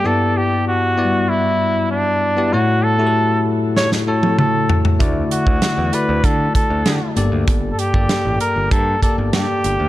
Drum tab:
HH |----------------|----------------|x-x-x-x-x-x-x-x-|x-x-x-x-x-x-x-x-|
SD |----------------|--------oo------|----o-------o---|----o-------o---|
T1 |----------------|-----------o----|----------------|----------------|
T2 |----------------|------------o---|----------------|----------------|
FT |----------------|--------------oo|----------------|----------------|
BD |----------------|----------------|o--o----o-o-----|o--o----o-o-----|